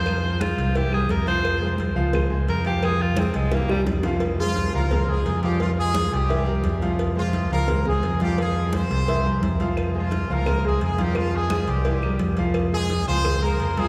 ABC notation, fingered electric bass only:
X:1
M:4/4
L:1/8
Q:1/4=173
K:Fm
V:1 name="Fingered electric bass" clef=bass
F,,3 C,,3 F,,2- | F,,3 D,,3 F,,2- | F,,3 C,,3 F,,2- | F,,3 D,,3 F,,2- |
F,,3 C,,3 F,,2- | F,,3 D,,3 F,,2- | F,,3 C,,3 F,,2- | F,,3 D,,3 F,,2- |
F,,3 C,,3 F,,2- | F,,3 D,,3 F,,2 |]